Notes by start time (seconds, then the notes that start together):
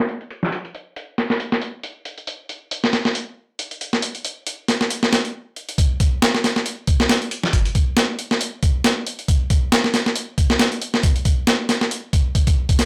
0.09 closed hi-hat
0.21 closed hi-hat
0.30 closed hi-hat
0.43 snare
0.52 closed hi-hat
0.65 closed hi-hat
0.75 closed hi-hat
0.96 closed hi-hat
1.18 snare, closed hi-hat
1.30 snare
1.40 closed hi-hat
1.52 snare
1.62 closed hi-hat
1.83 closed hi-hat
2.05 closed hi-hat
2.18 closed hi-hat
2.27 closed hi-hat
2.49 closed hi-hat
2.71 closed hi-hat
2.84 snare
2.93 snare, closed hi-hat
3.05 snare
3.15 closed hi-hat
3.59 closed hi-hat
3.71 closed hi-hat
3.81 closed hi-hat
3.93 snare
4.02 closed hi-hat
4.15 closed hi-hat
4.25 closed hi-hat
4.47 closed hi-hat
4.68 snare, closed hi-hat
4.81 snare
4.90 closed hi-hat
5.03 snare
5.13 snare, closed hi-hat
5.25 closed hi-hat
5.56 closed hi-hat
5.69 closed hi-hat
5.78 kick, closed hi-hat
6.00 kick, closed hi-hat
6.22 snare, closed hi-hat
6.35 snare
6.44 snare, closed hi-hat
6.56 snare
6.66 closed hi-hat
6.87 kick, closed hi-hat
7.00 snare
7.09 snare, closed hi-hat
7.22 closed hi-hat
7.31 closed hi-hat
7.43 snare
7.53 kick, closed hi-hat
7.65 closed hi-hat
7.75 kick, closed hi-hat
7.97 snare, closed hi-hat
8.19 closed hi-hat
8.31 snare
8.41 closed hi-hat
8.63 kick, closed hi-hat
8.84 snare, closed hi-hat
9.07 closed hi-hat
9.19 closed hi-hat
9.28 kick, closed hi-hat
9.50 kick, closed hi-hat
9.72 snare, closed hi-hat
9.84 snare
9.94 snare, closed hi-hat
10.06 snare
10.16 closed hi-hat
10.38 kick, closed hi-hat
10.50 snare
10.59 snare, closed hi-hat
10.72 closed hi-hat
10.82 closed hi-hat
10.94 snare
11.03 kick, closed hi-hat
11.16 closed hi-hat
11.25 kick, closed hi-hat
11.47 snare, closed hi-hat
11.69 snare, closed hi-hat
11.81 snare
11.91 closed hi-hat
12.13 kick, closed hi-hat
12.35 kick, closed hi-hat
12.47 kick, closed hi-hat
12.69 kick, closed hi-hat
12.79 snare, closed hi-hat